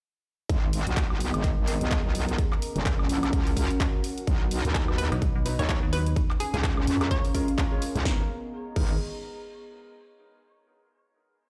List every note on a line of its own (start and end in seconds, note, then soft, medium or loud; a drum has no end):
0.49 0.85 G#1 loud
0.49 2.37 B3 medium
0.49 2.38 B3 medium
0.49 2.37 G#4 medium
0.49 2.37 A#4 medium
0.49 kick loud
0.49 closed hi-hat medium
0.73 open hi-hat loud
0.77 3.15 G#4 medium
0.77 3.15 D#5 medium
0.87 1.32 B1 loud
0.87 closed hi-hat medium
0.97 kick loud
0.97 clap loud
0.97 closed hi-hat medium
1.10 high woodblock medium
1.20 open hi-hat loud
1.34 1.55 G#1 loud
1.34 4.27 A#5 medium
1.34 closed hi-hat medium
1.34 high woodblock medium
1.44 kick loud
1.44 closed hi-hat medium
1.58 1.79 G#1 loud
1.68 open hi-hat loud
1.81 2.03 B1 loud
1.81 closed hi-hat medium
1.91 kick loud
1.91 clap loud
1.91 closed hi-hat medium
2.05 2.37 B1 loud
2.15 open hi-hat loud
2.29 closed hi-hat medium
2.38 5.04 C#4 medium
2.38 4.26 C#4 medium
2.38 6.13 F#4 medium
2.38 4.26 A#4 medium
2.38 kick loud
2.38 closed hi-hat medium
2.44 4.28 A#4 medium
2.49 6.16 F#5 medium
2.49 clap soft
2.49 high woodblock medium
2.62 open hi-hat loud
2.76 3.08 F#1 loud
2.76 closed hi-hat medium
2.86 kick loud
2.86 clap loud
2.86 closed hi-hat medium
2.99 high woodblock medium
3.09 3.31 A#1 medium
3.09 open hi-hat loud
3.23 closed hi-hat medium
3.23 high woodblock medium
3.33 3.68 C#2 loud
3.33 kick loud
3.33 closed hi-hat medium
3.47 open hi-hat medium
3.57 kick medium
3.57 open hi-hat loud
3.70 closed hi-hat medium
3.80 kick loud
3.80 clap loud
3.80 closed hi-hat medium
4.04 open hi-hat loud
4.18 closed hi-hat medium
4.27 4.63 B1 loud
4.27 6.15 B3 medium
4.27 6.93 D#4 medium
4.27 6.15 D#5 medium
4.27 kick loud
4.27 closed hi-hat medium
4.49 6.16 B4 medium
4.49 open hi-hat loud
4.65 5.10 D#2 medium
4.65 closed hi-hat soft
4.75 kick loud
4.75 clap loud
4.75 closed hi-hat medium
4.88 4.94 F#3 medium
4.88 4.94 B3 medium
4.88 4.94 D#4 medium
4.88 4.94 B4 medium
4.88 high woodblock medium
4.98 5.17 B4 medium
4.98 open hi-hat loud
5.12 5.33 B1 medium
5.12 5.18 F#3 loud
5.12 5.18 B3 medium
5.12 5.18 D#4 medium
5.12 5.18 B4 loud
5.12 6.16 B5 medium
5.12 closed hi-hat medium
5.12 high woodblock medium
5.22 kick loud
5.22 closed hi-hat medium
5.35 5.57 B1 loud
5.46 5.54 F#3 loud
5.46 5.54 B3 medium
5.46 5.54 D#4 medium
5.46 5.54 B4 loud
5.46 open hi-hat loud
5.59 5.81 D#2 loud
5.59 5.66 C#5 medium
5.59 closed hi-hat soft
5.69 5.78 C#5 medium
5.69 kick loud
5.69 clap loud
5.69 closed hi-hat medium
5.83 6.15 D#2 loud
5.93 6.01 F#3 loud
5.93 6.01 B3 medium
5.93 6.01 D#4 medium
5.93 6.22 B4 medium
5.93 6.01 B4 loud
5.93 open hi-hat loud
6.06 closed hi-hat medium
6.16 8.05 C#4 medium
6.16 8.04 C#4 medium
6.16 8.04 A#4 medium
6.16 8.04 F5 medium
6.16 kick loud
6.16 closed hi-hat medium
6.30 clap soft
6.30 high woodblock medium
6.35 8.05 G#4 medium
6.40 6.49 G#4 medium
6.40 8.05 F5 medium
6.40 open hi-hat loud
6.54 6.86 C#2 loud
6.54 6.60 G#4 medium
6.54 8.05 A#5 medium
6.54 closed hi-hat soft
6.64 kick loud
6.64 clap loud
6.64 closed hi-hat medium
6.77 6.83 G#3 medium
6.77 6.83 C#4 medium
6.77 6.83 F4 medium
6.77 6.83 A#4 medium
6.77 high woodblock medium
6.87 7.09 F2 medium
6.87 open hi-hat loud
7.01 7.07 G#3 medium
7.01 7.07 C#4 medium
7.01 7.07 F4 medium
7.01 7.07 A#4 loud
7.01 closed hi-hat medium
7.01 high woodblock medium
7.11 7.22 C#2 loud
7.11 7.78 C#5 medium
7.11 kick loud
7.11 closed hi-hat medium
7.25 open hi-hat medium
7.35 7.43 G#3 medium
7.35 7.43 C#4 medium
7.35 7.43 F4 medium
7.35 7.43 A#4 loud
7.35 kick medium
7.35 open hi-hat loud
7.48 closed hi-hat medium
7.58 7.70 G#3 medium
7.58 7.70 C#4 medium
7.58 7.70 F4 medium
7.58 7.70 A#4 loud
7.58 kick loud
7.58 clap loud
7.58 closed hi-hat medium
7.72 7.82 G#3 loud
7.72 7.82 C#4 medium
7.72 7.82 F4 medium
7.72 7.82 C#5 loud
7.82 open hi-hat loud
7.95 8.04 C#2 loud
7.95 closed hi-hat medium
8.05 8.20 G#1 medium
8.05 8.20 G#3 medium
8.05 8.27 B3 medium
8.05 9.90 B3 medium
8.05 8.20 B3 medium
8.05 8.20 D#4 medium
8.05 8.27 G#4 medium
8.05 8.27 A#4 medium
8.05 8.20 A#4 medium
8.05 kick loud
8.05 snare medium
8.13 9.90 G#4 medium
8.21 9.90 D#5 medium
8.27 9.90 A#5 medium
8.76 8.98 G#1 loud
8.76 8.95 G#3 medium
8.76 8.95 B3 medium
8.76 8.95 D#4 medium
8.76 8.95 A#4 medium
8.76 kick loud
8.76 crash medium